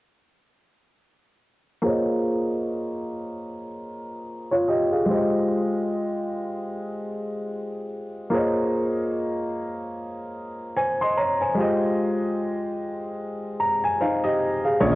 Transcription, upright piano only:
1.82 4.22 A#3 medium
1.82 4.22 F4 medium
1.82 4.23 G#4 medium
1.82 4.24 C5 medium
1.87 4.24 C#5 medium
1.87 4.25 D#5 medium
4.51 4.67 F4 medium
4.51 4.67 C#5 medium
4.68 4.91 G4 medium
4.68 4.90 D#5 medium
4.92 5.30 G#4 soft
4.92 5.30 F5 medium
5.06 8.27 G#3 medium
5.06 8.28 F4 medium
5.06 8.29 G4 medium
5.10 8.29 C5 medium
5.10 8.30 D#5 medium
8.30 11.51 A#3 medium
8.30 11.52 F4 medium
8.30 11.53 G#4 medium
8.34 10.72 C5 medium
8.34 10.73 C#5 medium
8.34 10.74 D#5 medium
10.76 10.99 C5 medium
10.76 10.99 G#5 medium
11.01 11.16 D#5 medium
11.01 11.16 C6 medium
11.17 11.39 C#5 medium
11.17 11.39 A#5 medium
11.41 11.58 C5 soft
11.41 11.79 G#5 medium
11.54 14.76 G#3 medium
11.54 13.95 F4 medium
11.54 13.96 G4 medium
11.60 13.97 C5 medium
11.60 13.98 D#5 medium
13.60 13.82 A#5 medium
13.84 13.99 G#5 medium
14.00 14.23 D#4 medium
14.00 14.23 C5 medium
14.00 14.22 F5 medium
14.24 14.62 G4 medium
14.24 14.77 D#5 medium
14.64 14.95 G#4 medium
14.64 14.95 F5 medium
14.80 14.95 C#4 medium
14.80 14.95 C#5 medium

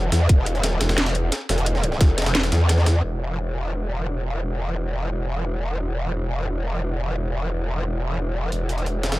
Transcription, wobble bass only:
0.00 0.11 E1 medium
0.12 0.28 E2 medium
0.29 0.79 E1 loud
0.81 1.31 E1 loud
1.49 1.99 E1 medium
2.01 2.51 E1 loud
2.52 3.02 E2 loud
3.03 8.50 E1 medium
8.52 9.19 E1 medium

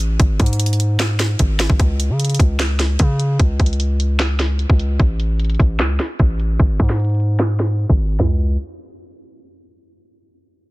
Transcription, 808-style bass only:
0.00 0.18 A1 loud
0.20 0.39 G#1 loud
0.40 1.36 G#2 loud
1.40 1.68 G#1 loud
1.70 1.79 G#1 loud
1.80 2.11 C#2 loud
2.10 2.38 C#3 loud
2.40 2.97 C#2 loud
3.00 3.38 C#3 loud
3.40 3.59 C#2 loud
3.60 4.66 C#2 loud
4.70 4.98 C#2 loud
5.00 5.57 A1 loud
5.60 5.81 A1 loud
5.80 5.99 C#2 loud
6.20 6.58 A1 loud
6.60 6.79 G#1 loud
6.80 7.86 G#2 loud
7.90 8.18 G#1 loud
8.20 8.57 C#2 loud

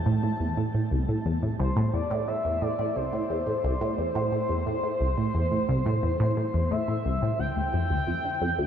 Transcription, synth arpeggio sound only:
0.06 0.20 A2 medium
0.23 0.29 A2 medium
0.40 0.54 E2 medium
0.57 0.63 A2 medium
0.74 0.80 A2 medium
0.91 1.05 C2 medium
1.09 1.18 A2 medium
1.26 1.35 E2 medium
1.43 1.48 A2 medium
1.60 1.69 C2 loud
1.77 1.90 A2 loud
1.94 1.99 E2 medium
2.11 2.24 A2 medium
2.28 2.33 A2 medium
2.45 2.58 E2 medium
2.62 2.67 A2 medium
2.79 2.84 A2 medium
2.96 3.10 C2 medium
3.13 3.22 A2 medium
3.30 3.39 E2 medium
3.47 3.52 A2 medium
3.64 3.73 C2 loud
3.81 3.95 A2 medium
3.98 4.04 E2 medium
4.15 4.29 A2 loud
4.32 4.38 A2 medium
4.49 4.63 E2 medium
4.66 4.72 A2 medium
4.83 4.89 A2 medium
5.00 5.14 C2 medium
5.18 5.27 A2 medium
5.35 5.44 E2 medium
5.52 5.57 A2 medium
5.69 5.78 C2 loud
5.86 5.99 A2 medium
6.03 6.08 E2 medium
6.20 6.34 A2 medium
6.37 6.42 A2 medium
6.54 6.68 E2 medium
6.71 6.76 A2 medium
6.88 6.94 A2 medium
7.05 7.19 C2 medium
7.22 7.31 A2 medium
7.39 7.45 D2 medium
7.56 7.62 D2 medium
7.73 7.87 F2 medium
7.90 7.99 D2 medium
8.07 8.13 F2 medium
8.24 8.30 D3 medium
8.41 8.51 F2 loud
8.59 8.67 D2 loud

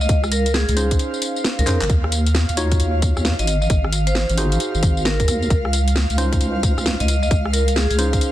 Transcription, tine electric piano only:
0.77 1.65 C#4 medium
0.77 1.65 D#4 medium
0.77 1.65 G#4 medium
0.77 1.65 C5 medium
1.67 1.78 C#4 medium
1.67 1.78 D#4 medium
1.67 1.78 G#4 medium
1.67 1.78 C5 medium
2.57 3.46 D#4 medium
2.57 3.46 F4 medium
2.57 3.46 F#4 medium
2.57 3.46 C#5 medium
4.38 5.49 D#4 medium
4.38 5.49 F#4 medium
4.38 5.49 G#4 medium
4.38 5.49 C5 medium
6.18 7.07 C#4 medium
6.18 7.07 D#4 medium
6.18 7.07 F4 medium
6.18 7.07 C5 medium
7.99 8.32 C#4 medium
7.99 8.32 D#4 medium
7.99 8.32 G#4 medium
7.99 8.32 C5 medium

